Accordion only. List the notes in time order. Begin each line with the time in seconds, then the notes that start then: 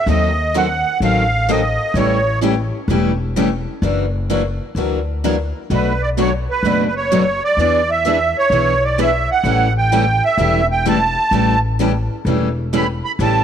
0.10 D#5
0.57 F#5
1.04 F5
1.50 D#5
1.96 C#5
5.73 B4
6.02 D5
6.21 C#5
6.50 B4
6.87 B4
6.96 C#5
7.44 D5
7.91 E5
8.38 C#5
8.84 D5
9.01 E5
9.31 F#5
9.78 G5
10.25 E5
10.72 G5
10.89 A5
12.75 B5
13.05 B5
13.23 A5